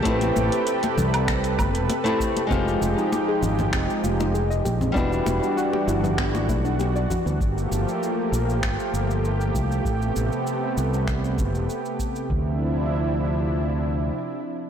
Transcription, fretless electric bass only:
X:1
M:4/4
L:1/16
Q:1/4=98
K:Dm
V:1 name="Fretless electric bass" clef=bass
A,,,2 A,,, z3 C,,4 G,,, E,,, z4 | F,,,2 F,,, z3 _A,,,2 F,,, z F,,,4 B,,,2 | E,,,2 E,,, z3 G,,,4 =B,,,4 z D,, | G,,,2 G,,, z3 B,,,2 G,,, z G,,,4 C,,2 |
A,,,2 A,,, z3 C,,4 G,,, E,,, z4 | D,,12 z4 |]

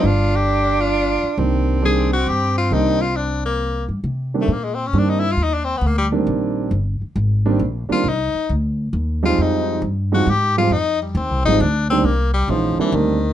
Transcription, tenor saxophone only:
X:1
M:3/4
L:1/16
Q:"Swing" 1/4=135
K:Cm
V:1 name="Tenor saxophone"
F2 G4 F6 | z4 A2 ^F2 G2 =F2 | E2 F2 D2 B,4 z2 | z3 =A, B, _A, C _D =D E =E F |
E D C =B, _B, G, z6 | z8 z2 F2 | E4 z6 F2 | E4 z2 ^F2 G2 =F2 |
E2 G,2 C2 E2 D2 C2 | B,2 G,2 F,2 =E,2 _E,4 |]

